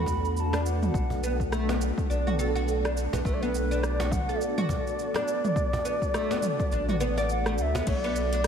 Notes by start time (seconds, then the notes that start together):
Already playing: E2 A3 B3 D4 F#4 A4 B5
0.06 cajon bass, kick, shaker
0.25 shaker
0.37 A5 B5, shaker
0.53 D4, cross-stick, cajon slap, shaker
0.65 F#5, shaker
0.83 mid tom, shaker
0.94 B1, kick, shaker
1.10 cajon bass, shaker
1.23 B3, cajon slap, shaker
1.40 kick, shaker
1.52 A3, cross-stick, shaker
1.69 B3, cajon slap, shaker
1.81 shaker
1.98 kick, shaker
2.10 B1 D4, shaker
2.27 F#4, mid tom, shaker
2.39 A4, shaker
2.55 F#4, shaker
2.68 shaker
2.85 D4, cross-stick, shaker
2.97 shaker
3.13 B1 B3, cajon bass, cajon slap, shaker
3.25 B1 A3 B4, kick, shaker
3.34 D5
3.42 B3 B4, shaker
3.55 shaker
3.71 D4, shaker
3.83 D5, cross-stick, shaker
4.00 F#4, cajon slap, shaker
4.12 F#5, kick, mid tom, shaker
4.29 A4, shaker
4.40 D5, shaker
4.58 F#4, mid tom, shaker
4.69 cajon bass, kick, shaker
4.87 shaker
4.99 shaker
5.14 D4, cross-stick, cajon slap, shaker
5.28 shaker
5.45 mid tom, shaker
5.56 kick, shaker
5.73 cajon bass, shaker
5.85 B3, cajon slap, shaker
6.02 kick, shaker
6.14 A3, cross-stick, shaker
6.31 B3, cajon slap, shaker
6.42 mid tom, shaker
6.60 kick, shaker
6.72 A1 D4, shaker
6.89 F#4, mid tom, shaker
7.00 B3, shaker
7.18 D5, cajon slap, shaker
7.29 F#5, shaker
7.46 A3, cross-stick, shaker
7.57 D2 F#5, shaker
7.62 E5
7.75 B3, cajon bass, cajon slap, shaker
7.87 B1 A3 B3 D4 F#4 B4 C#5, kick, closed hi-hat, crash, shaker
8.00 D5
8.04 B3, shaker
8.16 shaker
8.33 D4, closed hi-hat, shaker